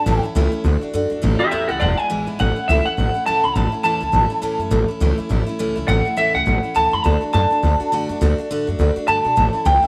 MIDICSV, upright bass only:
0, 0, Header, 1, 3, 480
1, 0, Start_track
1, 0, Key_signature, 3, "major"
1, 0, Tempo, 290698
1, 116, Time_signature, 4, 2, 24, 8
1, 16297, End_track
2, 0, Start_track
2, 0, Title_t, "Upright bass"
2, 0, Program_c, 0, 32
2, 100, Note_on_c, 0, 33, 103
2, 330, Note_off_c, 0, 33, 0
2, 586, Note_on_c, 0, 37, 94
2, 813, Note_off_c, 0, 37, 0
2, 1063, Note_on_c, 0, 38, 98
2, 1291, Note_off_c, 0, 38, 0
2, 1548, Note_on_c, 0, 42, 90
2, 1774, Note_off_c, 0, 42, 0
2, 1838, Note_on_c, 0, 42, 94
2, 1994, Note_off_c, 0, 42, 0
2, 2041, Note_on_c, 0, 33, 102
2, 2262, Note_off_c, 0, 33, 0
2, 2519, Note_on_c, 0, 40, 92
2, 2741, Note_off_c, 0, 40, 0
2, 2803, Note_on_c, 0, 37, 95
2, 2957, Note_off_c, 0, 37, 0
2, 3000, Note_on_c, 0, 28, 105
2, 3222, Note_off_c, 0, 28, 0
2, 3483, Note_on_c, 0, 33, 92
2, 3703, Note_off_c, 0, 33, 0
2, 3761, Note_on_c, 0, 32, 96
2, 3916, Note_off_c, 0, 32, 0
2, 3969, Note_on_c, 0, 33, 96
2, 4187, Note_off_c, 0, 33, 0
2, 4440, Note_on_c, 0, 37, 84
2, 4662, Note_off_c, 0, 37, 0
2, 4918, Note_on_c, 0, 33, 98
2, 5141, Note_off_c, 0, 33, 0
2, 5394, Note_on_c, 0, 37, 92
2, 5618, Note_off_c, 0, 37, 0
2, 5678, Note_on_c, 0, 37, 97
2, 5834, Note_off_c, 0, 37, 0
2, 5870, Note_on_c, 0, 33, 102
2, 6096, Note_off_c, 0, 33, 0
2, 6339, Note_on_c, 0, 40, 87
2, 6570, Note_off_c, 0, 40, 0
2, 6628, Note_on_c, 0, 37, 95
2, 6788, Note_off_c, 0, 37, 0
2, 6820, Note_on_c, 0, 33, 103
2, 7051, Note_off_c, 0, 33, 0
2, 7296, Note_on_c, 0, 38, 91
2, 7528, Note_off_c, 0, 38, 0
2, 7574, Note_on_c, 0, 42, 99
2, 7740, Note_off_c, 0, 42, 0
2, 7778, Note_on_c, 0, 33, 107
2, 8009, Note_off_c, 0, 33, 0
2, 8270, Note_on_c, 0, 37, 87
2, 8496, Note_off_c, 0, 37, 0
2, 8755, Note_on_c, 0, 33, 93
2, 8980, Note_off_c, 0, 33, 0
2, 9246, Note_on_c, 0, 37, 96
2, 9467, Note_off_c, 0, 37, 0
2, 9527, Note_on_c, 0, 37, 102
2, 9680, Note_off_c, 0, 37, 0
2, 9713, Note_on_c, 0, 33, 93
2, 9939, Note_off_c, 0, 33, 0
2, 10205, Note_on_c, 0, 40, 96
2, 10426, Note_off_c, 0, 40, 0
2, 10479, Note_on_c, 0, 37, 97
2, 10635, Note_off_c, 0, 37, 0
2, 10678, Note_on_c, 0, 33, 97
2, 10902, Note_off_c, 0, 33, 0
2, 11156, Note_on_c, 0, 38, 89
2, 11381, Note_off_c, 0, 38, 0
2, 11443, Note_on_c, 0, 42, 90
2, 11598, Note_off_c, 0, 42, 0
2, 11651, Note_on_c, 0, 38, 97
2, 11869, Note_off_c, 0, 38, 0
2, 12126, Note_on_c, 0, 42, 95
2, 12346, Note_off_c, 0, 42, 0
2, 12601, Note_on_c, 0, 38, 94
2, 12823, Note_off_c, 0, 38, 0
2, 13083, Note_on_c, 0, 42, 92
2, 13304, Note_off_c, 0, 42, 0
2, 13364, Note_on_c, 0, 42, 97
2, 13518, Note_off_c, 0, 42, 0
2, 13564, Note_on_c, 0, 38, 98
2, 13784, Note_off_c, 0, 38, 0
2, 14049, Note_on_c, 0, 45, 91
2, 14267, Note_off_c, 0, 45, 0
2, 14331, Note_on_c, 0, 42, 97
2, 14482, Note_off_c, 0, 42, 0
2, 14523, Note_on_c, 0, 38, 99
2, 14743, Note_off_c, 0, 38, 0
2, 14998, Note_on_c, 0, 43, 96
2, 15220, Note_off_c, 0, 43, 0
2, 15280, Note_on_c, 0, 47, 101
2, 15435, Note_off_c, 0, 47, 0
2, 15475, Note_on_c, 0, 33, 99
2, 15698, Note_off_c, 0, 33, 0
2, 15943, Note_on_c, 0, 37, 92
2, 16170, Note_off_c, 0, 37, 0
2, 16297, End_track
3, 0, Start_track
3, 0, Title_t, "Muted upright bass strokes"
3, 390, Note_on_c, 9, 29, 77
3, 555, Note_off_c, 9, 29, 0
3, 871, Note_on_c, 9, 29, 77
3, 1036, Note_off_c, 9, 29, 0
3, 3283, Note_on_c, 9, 29, 73
3, 3448, Note_off_c, 9, 29, 0
3, 4715, Note_on_c, 9, 29, 77
3, 4880, Note_off_c, 9, 29, 0
3, 5201, Note_on_c, 9, 29, 78
3, 5366, Note_off_c, 9, 29, 0
3, 6152, Note_on_c, 9, 29, 72
3, 6317, Note_off_c, 9, 29, 0
3, 7104, Note_on_c, 9, 29, 78
3, 7269, Note_off_c, 9, 29, 0
3, 8551, Note_on_c, 9, 29, 77
3, 8716, Note_off_c, 9, 29, 0
3, 9037, Note_on_c, 9, 29, 76
3, 9202, Note_off_c, 9, 29, 0
3, 10961, Note_on_c, 9, 29, 72
3, 11126, Note_off_c, 9, 29, 0
3, 11928, Note_on_c, 9, 29, 82
3, 12094, Note_off_c, 9, 29, 0
3, 12405, Note_on_c, 9, 29, 76
3, 12570, Note_off_c, 9, 29, 0
3, 13848, Note_on_c, 9, 29, 79
3, 14013, Note_off_c, 9, 29, 0
3, 15749, Note_on_c, 9, 29, 77
3, 15914, Note_off_c, 9, 29, 0
3, 16230, Note_on_c, 9, 29, 85
3, 16297, Note_off_c, 9, 29, 0
3, 16297, End_track
0, 0, End_of_file